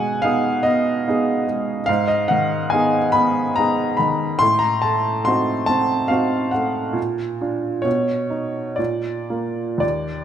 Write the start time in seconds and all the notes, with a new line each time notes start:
Already playing: B2 G#3 F#5 G#5
0.22 B3 D#4 G#4 F5
0.63 B3 D#5
1.08 B3 D#4 G#4
1.48 G#3
1.86 G#2 F5
2.08 D#5
2.28 D#3 F#5
2.70 B3 D#4 G#4 G#5
3.12 B3 B5
3.56 B3 D#4 G#4 A#5
3.97 D#3 B5
4.39 A2 C6
4.59 A#5
4.82 A3 A5
5.25 C4 D#4 F#4 C6
5.66 C4 A5
6.08 C4 D#4 F#4 F5
6.51 A3 F#5
6.93 A#2
7.41 D4 F4
7.82 B2 C#5
8.30 D#4
8.76 A#2 D5
9.30 A#3 F4
9.78 D#2 D5